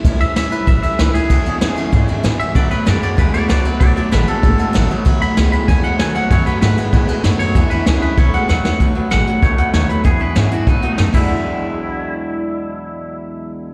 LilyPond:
<<
  \new Staff \with { instrumentName = "Clean electric guitar" } { \time 4/4 \key e \mixolydian \tempo 4 = 192 r8 e''8 e''8 b'8 e''8 e''8 b'8 gis'8~ | gis'2~ gis'8 r4 e''8 | d''8 b'8 d''8 d''8 b'8 d''8 d''8 b'8 | d''8 d''8 b'8 a'2 r8 |
r8 b''8 r8 b''8 gis''8 fis''8 gis''8 fis''8 | cis''8 b'8 b'2 r8 cis''8~ | cis''8 b'8 gis'8 b'8 cis''8 fis''8 fis''4 | r4 fis''4 cis''8 fis''8 cis''8 b'8 |
gis'8 b'8 gis'8 fis'8 dis'4. e'8~ | e'1~ | e'1 | }
  \new Staff \with { instrumentName = "Steel-string acoustic guitar" } { \time 4/4 \key e \mixolydian <a, e g cis' e'>8 <g cis' e'>8 <a, e g cis' e'>8 <g cis' e'>8 <e g cis' e'>8 <g cis' e'>8 <a, e g cis' e'>8 <g cis' e'>8 | <e, b, e gis d' e'>8 <e gis d' e'>8 <e, b, e gis d' e'>8 <e gis d' e'>8 <e gis d' e'>8 <e gis d' e'>8 <e, b, e gis d' e'>8 <e gis d' e'>8 | <b, dis a b fis'>8 <a b fis'>8 <b, dis a b fis'>8 <a b fis'>8 <dis a b fis'>8 <a b fis'>8 <b, dis a b fis'>8 <a b fis'>8 | <b, dis a b fis'>8 <a b fis'>8 <b, dis a b fis'>8 <a b fis'>8 <dis a b fis'>8 <a b fis'>8 <b, dis a b fis'>8 <a b fis'>8 |
<b, dis a b fis'>8 <a b fis'>8 <b, dis a b fis'>8 <a b fis'>8 <dis a b fis'>8 <a b fis'>8 <b, dis a b fis'>8 <a b fis'>8 | <b, dis a b fis'>8 <a b fis'>8 <b, dis a b fis'>8 <a b fis'>8 <dis a b fis'>8 <a b fis'>8 <b, dis a b fis'>8 <a b fis'>8 | <e, b, e gis d' e'>8 <e gis d' e'>8 <e, b, e gis d' e'>8 <e gis d' e'>8 <dis a b fis'>8 <a b fis'>8 <b, dis a b fis'>8 <a b fis'>8 | <b, dis a b fis'>8 <a b fis'>8 <b, dis a b fis'>8 <a b fis'>8 <dis a b fis'>8 <a b fis'>8 <b, dis a b fis'>8 <a b fis'>8 |
<e, b, e gis d' e'>8 <e gis d' e'>8 <e, b, e gis d' e'>8 <e gis d' e'>8 <dis a b fis'>8 <a b fis'>8 <b, dis a b fis'>8 <e, b, fis gis d' e'>8~ | <e, b, fis gis d' e'>1~ | <e, b, fis gis d' e'>1 | }
  \new Staff \with { instrumentName = "Clean electric guitar" } { \clef bass \time 4/4 \key e \mixolydian r1 | <e, b,>8 <e, b,>8 <e, cis>8 <e, cis>8 <e, cis>8 <e, cis>8 <e, b,>8 <e, b,>8 | <b, fis>8 <b, fis>8 <b, gis>8 <b, gis>8 <b, gis>8 <b, gis>8 <b, fis>8 <b, fis>8 | <b, fis>8 <b, fis>8 <b, gis>8 <b, gis>8 <b, gis>8 <b, gis>8 <b, fis>8 <b, fis>8 |
<b, fis>8 <b, fis>8 <b, gis>8 <b, gis>8 <b, gis>8 <b, gis>8 <b, fis>8 <b, fis>8 | <b, fis>8 <b, fis>8 <b, gis>8 <b, gis>8 <b, gis>8 <b, gis>8 <b, fis>8 <b, fis>8 | <e, b,>8 <e, b,>8 <e, cis>8 <e, cis>8 <b, fis>8 <b, gis>8 <b, fis>8 <b, fis>8 | <b, fis>8 <b, fis>8 <b, gis>8 <b, fis>8 <b, a>8 <b, a>8 <b, a>8 <b, fis>8 |
<e, b,>8 <e, b,>8 <e, cis>8 <e, b,>8 <b, fis>8 <b, a>8 <b, a>8 <e gis d' fis'>8~ | <e gis d' fis'>1~ | <e gis d' fis'>1 | }
  \new Staff \with { instrumentName = "Upright bass" } { \clef bass \time 4/4 \key e \mixolydian cis,8 r8 b,,8 r8 a,,8 r8 cis,8 r8 | e,8 r8 fis,8 r8 gis,8 r8 a,8 r8 | b,8 r8 fis,8 r8 dis,8 r8 cis,8 r8 | b,,8 r8 a,,8 r8 gis,,8 r8 a,,8 r8 |
b,,8 r8 cis,8 r8 dis,8 r8 e,8 r8 | fis,8 r8 gis,8 r8 a,8 r8 fis,8 r8 | e,8 r8 cis,8 r8 b,,8 r8 dis,8 r8 | b,,8 r8 a,,8 r8 cis,8 r8 dis,8 r8 |
e,8 r8 gis,8 r8 b,8 r8 fis,8 r8 | r1 | r1 | }
  \new DrumStaff \with { instrumentName = "Drums" } \drummode { \time 4/4 <bd cymr>8 cymr8 <cymr sn>8 cymr8 <bd cymr>8 cymr8 <cymr sn>8 cymr8 | <bd cymr>8 cymr8 <cymr sn>8 cymr8 <bd cymr>8 cymr8 <cymr sn>8 cymr8 | <bd cymr>8 cymr8 <cymr sn>8 cymr8 <bd cymr>8 cymr8 <cymr sn>8 cymr8 | <bd cymr>8 cymr8 <cymr sn>8 cymr8 <bd cymr>8 cymr8 <cymr sn>8 cymr8 |
<bd cymr>8 cymr8 <cymr sn>8 cymr8 <bd cymr>8 cymr8 <cymr sn>8 cymr8 | <bd cymr>8 cymr8 <cymr sn>8 cymr8 <bd cymr>8 cymr8 <cymr sn>8 cymr8 | <bd cymr>8 cymr8 <cymr sn>8 cymr8 <bd cymr>8 cymr8 sn8 sn8 | <hh bd>4 <hh sn>8 hh8 <hh bd>8 hh8 <hh sn>8 hh8 |
<hh bd>4 <hh sn>8 hh8 <hh bd>8 hh8 <hh sn>8 <cymc bd>8 | r4 r4 r4 r4 | r4 r4 r4 r4 | }
>>